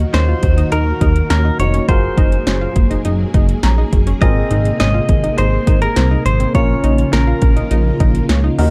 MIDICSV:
0, 0, Header, 1, 7, 480
1, 0, Start_track
1, 0, Key_signature, -5, "minor"
1, 0, Tempo, 582524
1, 1554, Time_signature, 4, 2, 24, 8
1, 7171, End_track
2, 0, Start_track
2, 0, Title_t, "Clean electric guitar"
2, 0, Program_c, 0, 27
2, 116, Note_on_c, 0, 72, 90
2, 591, Note_off_c, 0, 72, 0
2, 594, Note_on_c, 0, 70, 93
2, 1065, Note_off_c, 0, 70, 0
2, 1075, Note_on_c, 0, 70, 88
2, 1313, Note_off_c, 0, 70, 0
2, 1316, Note_on_c, 0, 73, 94
2, 1538, Note_off_c, 0, 73, 0
2, 1554, Note_on_c, 0, 72, 96
2, 2481, Note_off_c, 0, 72, 0
2, 3474, Note_on_c, 0, 75, 109
2, 3945, Note_off_c, 0, 75, 0
2, 3955, Note_on_c, 0, 75, 106
2, 4433, Note_off_c, 0, 75, 0
2, 4436, Note_on_c, 0, 72, 99
2, 4791, Note_off_c, 0, 72, 0
2, 4794, Note_on_c, 0, 70, 89
2, 5152, Note_off_c, 0, 70, 0
2, 5156, Note_on_c, 0, 72, 86
2, 5393, Note_off_c, 0, 72, 0
2, 5396, Note_on_c, 0, 73, 100
2, 5872, Note_off_c, 0, 73, 0
2, 5875, Note_on_c, 0, 70, 78
2, 6802, Note_off_c, 0, 70, 0
2, 7171, End_track
3, 0, Start_track
3, 0, Title_t, "Grand piano"
3, 0, Program_c, 1, 0
3, 0, Note_on_c, 1, 63, 79
3, 0, Note_on_c, 1, 66, 76
3, 0, Note_on_c, 1, 70, 88
3, 1282, Note_off_c, 1, 63, 0
3, 1282, Note_off_c, 1, 66, 0
3, 1282, Note_off_c, 1, 70, 0
3, 1315, Note_on_c, 1, 63, 52
3, 1315, Note_on_c, 1, 66, 45
3, 1315, Note_on_c, 1, 73, 58
3, 1543, Note_off_c, 1, 66, 0
3, 1554, Note_off_c, 1, 73, 0
3, 1555, Note_off_c, 1, 63, 0
3, 1555, Note_on_c, 1, 66, 63
3, 1555, Note_on_c, 1, 68, 60
3, 1555, Note_on_c, 1, 70, 73
3, 2994, Note_on_c, 1, 82, 69
3, 3442, Note_off_c, 1, 66, 0
3, 3442, Note_off_c, 1, 68, 0
3, 3442, Note_off_c, 1, 70, 0
3, 3442, Note_off_c, 1, 82, 0
3, 3473, Note_on_c, 1, 60, 66
3, 3474, Note_on_c, 1, 68, 59
3, 3474, Note_on_c, 1, 70, 69
3, 5361, Note_off_c, 1, 60, 0
3, 5361, Note_off_c, 1, 68, 0
3, 5361, Note_off_c, 1, 70, 0
3, 5395, Note_on_c, 1, 61, 65
3, 5395, Note_on_c, 1, 65, 62
3, 5395, Note_on_c, 1, 70, 75
3, 7042, Note_off_c, 1, 61, 0
3, 7042, Note_off_c, 1, 65, 0
3, 7042, Note_off_c, 1, 70, 0
3, 7074, Note_on_c, 1, 63, 81
3, 7074, Note_on_c, 1, 66, 76
3, 7074, Note_on_c, 1, 70, 86
3, 7171, Note_off_c, 1, 63, 0
3, 7171, Note_off_c, 1, 66, 0
3, 7171, Note_off_c, 1, 70, 0
3, 7171, End_track
4, 0, Start_track
4, 0, Title_t, "Synth pluck"
4, 0, Program_c, 2, 84
4, 114, Note_on_c, 2, 61, 86
4, 196, Note_off_c, 2, 61, 0
4, 234, Note_on_c, 2, 65, 73
4, 398, Note_off_c, 2, 65, 0
4, 474, Note_on_c, 2, 63, 72
4, 556, Note_off_c, 2, 63, 0
4, 594, Note_on_c, 2, 63, 91
4, 758, Note_off_c, 2, 63, 0
4, 834, Note_on_c, 2, 63, 80
4, 998, Note_off_c, 2, 63, 0
4, 1074, Note_on_c, 2, 61, 81
4, 1156, Note_off_c, 2, 61, 0
4, 1194, Note_on_c, 2, 63, 73
4, 1358, Note_off_c, 2, 63, 0
4, 1435, Note_on_c, 2, 61, 74
4, 1516, Note_off_c, 2, 61, 0
4, 1554, Note_on_c, 2, 65, 91
4, 1718, Note_off_c, 2, 65, 0
4, 1794, Note_on_c, 2, 63, 83
4, 1958, Note_off_c, 2, 63, 0
4, 2034, Note_on_c, 2, 61, 83
4, 2116, Note_off_c, 2, 61, 0
4, 2154, Note_on_c, 2, 65, 74
4, 2318, Note_off_c, 2, 65, 0
4, 2394, Note_on_c, 2, 63, 73
4, 2476, Note_off_c, 2, 63, 0
4, 2514, Note_on_c, 2, 63, 91
4, 2678, Note_off_c, 2, 63, 0
4, 2755, Note_on_c, 2, 63, 80
4, 2918, Note_off_c, 2, 63, 0
4, 2994, Note_on_c, 2, 61, 82
4, 3076, Note_off_c, 2, 61, 0
4, 3115, Note_on_c, 2, 63, 73
4, 3278, Note_off_c, 2, 63, 0
4, 3354, Note_on_c, 2, 61, 75
4, 3436, Note_off_c, 2, 61, 0
4, 3474, Note_on_c, 2, 65, 94
4, 3638, Note_off_c, 2, 65, 0
4, 3714, Note_on_c, 2, 63, 83
4, 3878, Note_off_c, 2, 63, 0
4, 3954, Note_on_c, 2, 61, 86
4, 4036, Note_off_c, 2, 61, 0
4, 4074, Note_on_c, 2, 65, 72
4, 4238, Note_off_c, 2, 65, 0
4, 4315, Note_on_c, 2, 63, 71
4, 4397, Note_off_c, 2, 63, 0
4, 4435, Note_on_c, 2, 63, 88
4, 4598, Note_off_c, 2, 63, 0
4, 4675, Note_on_c, 2, 63, 82
4, 4838, Note_off_c, 2, 63, 0
4, 4915, Note_on_c, 2, 60, 86
4, 4997, Note_off_c, 2, 60, 0
4, 5035, Note_on_c, 2, 63, 74
4, 5199, Note_off_c, 2, 63, 0
4, 5275, Note_on_c, 2, 60, 71
4, 5357, Note_off_c, 2, 60, 0
4, 5395, Note_on_c, 2, 65, 91
4, 5558, Note_off_c, 2, 65, 0
4, 5634, Note_on_c, 2, 63, 83
4, 5798, Note_off_c, 2, 63, 0
4, 5874, Note_on_c, 2, 61, 83
4, 5956, Note_off_c, 2, 61, 0
4, 5994, Note_on_c, 2, 65, 73
4, 6158, Note_off_c, 2, 65, 0
4, 6233, Note_on_c, 2, 63, 75
4, 6315, Note_off_c, 2, 63, 0
4, 6353, Note_on_c, 2, 63, 91
4, 6517, Note_off_c, 2, 63, 0
4, 6593, Note_on_c, 2, 63, 80
4, 6757, Note_off_c, 2, 63, 0
4, 6834, Note_on_c, 2, 61, 85
4, 6916, Note_off_c, 2, 61, 0
4, 6953, Note_on_c, 2, 63, 74
4, 7117, Note_off_c, 2, 63, 0
4, 7171, End_track
5, 0, Start_track
5, 0, Title_t, "String machine"
5, 0, Program_c, 3, 50
5, 0, Note_on_c, 3, 51, 84
5, 0, Note_on_c, 3, 58, 73
5, 0, Note_on_c, 3, 66, 94
5, 1533, Note_off_c, 3, 51, 0
5, 1533, Note_off_c, 3, 66, 0
5, 1553, Note_on_c, 3, 54, 82
5, 1554, Note_on_c, 3, 68, 91
5, 3455, Note_off_c, 3, 54, 0
5, 3475, Note_on_c, 3, 48, 84
5, 5361, Note_off_c, 3, 68, 0
5, 5376, Note_off_c, 3, 48, 0
5, 5393, Note_on_c, 3, 65, 91
5, 5394, Note_on_c, 3, 49, 80
5, 7041, Note_off_c, 3, 58, 0
5, 7057, Note_off_c, 3, 49, 0
5, 7057, Note_off_c, 3, 65, 0
5, 7073, Note_on_c, 3, 51, 86
5, 7074, Note_on_c, 3, 58, 78
5, 7074, Note_on_c, 3, 66, 95
5, 7171, Note_off_c, 3, 51, 0
5, 7171, Note_off_c, 3, 58, 0
5, 7171, Note_off_c, 3, 66, 0
5, 7171, End_track
6, 0, Start_track
6, 0, Title_t, "Analog synth bass"
6, 0, Program_c, 4, 38
6, 115, Note_on_c, 4, 39, 104
6, 283, Note_off_c, 4, 39, 0
6, 355, Note_on_c, 4, 39, 95
6, 522, Note_off_c, 4, 39, 0
6, 595, Note_on_c, 4, 39, 110
6, 763, Note_off_c, 4, 39, 0
6, 834, Note_on_c, 4, 39, 96
6, 1002, Note_off_c, 4, 39, 0
6, 1074, Note_on_c, 4, 39, 96
6, 1242, Note_off_c, 4, 39, 0
6, 1314, Note_on_c, 4, 29, 96
6, 1482, Note_off_c, 4, 29, 0
6, 1554, Note_on_c, 4, 30, 110
6, 1722, Note_off_c, 4, 30, 0
6, 1793, Note_on_c, 4, 30, 105
6, 1961, Note_off_c, 4, 30, 0
6, 2034, Note_on_c, 4, 30, 108
6, 2202, Note_off_c, 4, 30, 0
6, 2274, Note_on_c, 4, 30, 96
6, 2443, Note_off_c, 4, 30, 0
6, 2515, Note_on_c, 4, 30, 115
6, 2683, Note_off_c, 4, 30, 0
6, 2754, Note_on_c, 4, 30, 91
6, 2922, Note_off_c, 4, 30, 0
6, 2995, Note_on_c, 4, 34, 94
6, 3163, Note_off_c, 4, 34, 0
6, 3235, Note_on_c, 4, 30, 89
6, 3403, Note_off_c, 4, 30, 0
6, 3474, Note_on_c, 4, 32, 107
6, 3642, Note_off_c, 4, 32, 0
6, 3715, Note_on_c, 4, 32, 99
6, 3883, Note_off_c, 4, 32, 0
6, 3955, Note_on_c, 4, 32, 100
6, 4123, Note_off_c, 4, 32, 0
6, 4194, Note_on_c, 4, 32, 99
6, 4362, Note_off_c, 4, 32, 0
6, 4435, Note_on_c, 4, 32, 99
6, 4603, Note_off_c, 4, 32, 0
6, 4675, Note_on_c, 4, 32, 94
6, 4843, Note_off_c, 4, 32, 0
6, 4915, Note_on_c, 4, 36, 87
6, 5083, Note_off_c, 4, 36, 0
6, 5153, Note_on_c, 4, 32, 89
6, 5322, Note_off_c, 4, 32, 0
6, 5395, Note_on_c, 4, 34, 105
6, 5563, Note_off_c, 4, 34, 0
6, 5634, Note_on_c, 4, 34, 98
6, 5802, Note_off_c, 4, 34, 0
6, 5874, Note_on_c, 4, 34, 104
6, 6042, Note_off_c, 4, 34, 0
6, 6114, Note_on_c, 4, 34, 98
6, 6282, Note_off_c, 4, 34, 0
6, 6354, Note_on_c, 4, 34, 104
6, 6522, Note_off_c, 4, 34, 0
6, 6594, Note_on_c, 4, 34, 101
6, 6762, Note_off_c, 4, 34, 0
6, 6834, Note_on_c, 4, 37, 97
6, 7002, Note_off_c, 4, 37, 0
6, 7074, Note_on_c, 4, 39, 101
6, 7171, Note_off_c, 4, 39, 0
6, 7171, End_track
7, 0, Start_track
7, 0, Title_t, "Drums"
7, 114, Note_on_c, 9, 42, 72
7, 115, Note_on_c, 9, 38, 100
7, 196, Note_off_c, 9, 42, 0
7, 197, Note_off_c, 9, 38, 0
7, 352, Note_on_c, 9, 42, 80
7, 355, Note_on_c, 9, 36, 91
7, 434, Note_off_c, 9, 42, 0
7, 437, Note_off_c, 9, 36, 0
7, 476, Note_on_c, 9, 42, 55
7, 558, Note_off_c, 9, 42, 0
7, 592, Note_on_c, 9, 42, 74
7, 674, Note_off_c, 9, 42, 0
7, 833, Note_on_c, 9, 42, 70
7, 835, Note_on_c, 9, 36, 88
7, 916, Note_off_c, 9, 42, 0
7, 917, Note_off_c, 9, 36, 0
7, 954, Note_on_c, 9, 42, 58
7, 1036, Note_off_c, 9, 42, 0
7, 1073, Note_on_c, 9, 38, 104
7, 1073, Note_on_c, 9, 42, 80
7, 1155, Note_off_c, 9, 38, 0
7, 1155, Note_off_c, 9, 42, 0
7, 1315, Note_on_c, 9, 42, 79
7, 1397, Note_off_c, 9, 42, 0
7, 1432, Note_on_c, 9, 42, 59
7, 1515, Note_off_c, 9, 42, 0
7, 1554, Note_on_c, 9, 36, 116
7, 1554, Note_on_c, 9, 42, 73
7, 1636, Note_off_c, 9, 36, 0
7, 1636, Note_off_c, 9, 42, 0
7, 1793, Note_on_c, 9, 36, 111
7, 1793, Note_on_c, 9, 42, 66
7, 1875, Note_off_c, 9, 36, 0
7, 1876, Note_off_c, 9, 42, 0
7, 1914, Note_on_c, 9, 42, 54
7, 1996, Note_off_c, 9, 42, 0
7, 2034, Note_on_c, 9, 38, 100
7, 2034, Note_on_c, 9, 42, 73
7, 2116, Note_off_c, 9, 42, 0
7, 2117, Note_off_c, 9, 38, 0
7, 2272, Note_on_c, 9, 42, 84
7, 2274, Note_on_c, 9, 36, 95
7, 2355, Note_off_c, 9, 42, 0
7, 2357, Note_off_c, 9, 36, 0
7, 2396, Note_on_c, 9, 42, 54
7, 2478, Note_off_c, 9, 42, 0
7, 2512, Note_on_c, 9, 42, 74
7, 2594, Note_off_c, 9, 42, 0
7, 2754, Note_on_c, 9, 36, 90
7, 2754, Note_on_c, 9, 42, 68
7, 2836, Note_off_c, 9, 42, 0
7, 2837, Note_off_c, 9, 36, 0
7, 2873, Note_on_c, 9, 42, 57
7, 2956, Note_off_c, 9, 42, 0
7, 2993, Note_on_c, 9, 38, 103
7, 2993, Note_on_c, 9, 42, 79
7, 3075, Note_off_c, 9, 38, 0
7, 3075, Note_off_c, 9, 42, 0
7, 3235, Note_on_c, 9, 36, 84
7, 3235, Note_on_c, 9, 42, 76
7, 3318, Note_off_c, 9, 36, 0
7, 3318, Note_off_c, 9, 42, 0
7, 3352, Note_on_c, 9, 42, 60
7, 3435, Note_off_c, 9, 42, 0
7, 3474, Note_on_c, 9, 36, 113
7, 3474, Note_on_c, 9, 42, 73
7, 3556, Note_off_c, 9, 36, 0
7, 3556, Note_off_c, 9, 42, 0
7, 3713, Note_on_c, 9, 42, 68
7, 3796, Note_off_c, 9, 42, 0
7, 3834, Note_on_c, 9, 42, 53
7, 3917, Note_off_c, 9, 42, 0
7, 3954, Note_on_c, 9, 42, 75
7, 3955, Note_on_c, 9, 38, 102
7, 4036, Note_off_c, 9, 42, 0
7, 4037, Note_off_c, 9, 38, 0
7, 4192, Note_on_c, 9, 42, 82
7, 4194, Note_on_c, 9, 36, 96
7, 4274, Note_off_c, 9, 42, 0
7, 4277, Note_off_c, 9, 36, 0
7, 4316, Note_on_c, 9, 42, 56
7, 4398, Note_off_c, 9, 42, 0
7, 4432, Note_on_c, 9, 42, 73
7, 4514, Note_off_c, 9, 42, 0
7, 4673, Note_on_c, 9, 42, 71
7, 4675, Note_on_c, 9, 36, 94
7, 4756, Note_off_c, 9, 42, 0
7, 4757, Note_off_c, 9, 36, 0
7, 4794, Note_on_c, 9, 42, 57
7, 4876, Note_off_c, 9, 42, 0
7, 4914, Note_on_c, 9, 38, 103
7, 4914, Note_on_c, 9, 42, 77
7, 4996, Note_off_c, 9, 42, 0
7, 4997, Note_off_c, 9, 38, 0
7, 5156, Note_on_c, 9, 42, 79
7, 5238, Note_off_c, 9, 42, 0
7, 5274, Note_on_c, 9, 42, 60
7, 5356, Note_off_c, 9, 42, 0
7, 5394, Note_on_c, 9, 36, 117
7, 5395, Note_on_c, 9, 42, 74
7, 5477, Note_off_c, 9, 36, 0
7, 5477, Note_off_c, 9, 42, 0
7, 5634, Note_on_c, 9, 42, 66
7, 5716, Note_off_c, 9, 42, 0
7, 5754, Note_on_c, 9, 42, 54
7, 5837, Note_off_c, 9, 42, 0
7, 5874, Note_on_c, 9, 38, 105
7, 5874, Note_on_c, 9, 42, 75
7, 5956, Note_off_c, 9, 42, 0
7, 5957, Note_off_c, 9, 38, 0
7, 6111, Note_on_c, 9, 42, 85
7, 6114, Note_on_c, 9, 36, 98
7, 6193, Note_off_c, 9, 42, 0
7, 6197, Note_off_c, 9, 36, 0
7, 6234, Note_on_c, 9, 42, 54
7, 6317, Note_off_c, 9, 42, 0
7, 6351, Note_on_c, 9, 42, 73
7, 6434, Note_off_c, 9, 42, 0
7, 6593, Note_on_c, 9, 42, 71
7, 6594, Note_on_c, 9, 36, 93
7, 6676, Note_off_c, 9, 42, 0
7, 6677, Note_off_c, 9, 36, 0
7, 6714, Note_on_c, 9, 42, 57
7, 6796, Note_off_c, 9, 42, 0
7, 6833, Note_on_c, 9, 38, 104
7, 6833, Note_on_c, 9, 42, 78
7, 6915, Note_off_c, 9, 38, 0
7, 6915, Note_off_c, 9, 42, 0
7, 7075, Note_on_c, 9, 46, 81
7, 7157, Note_off_c, 9, 46, 0
7, 7171, End_track
0, 0, End_of_file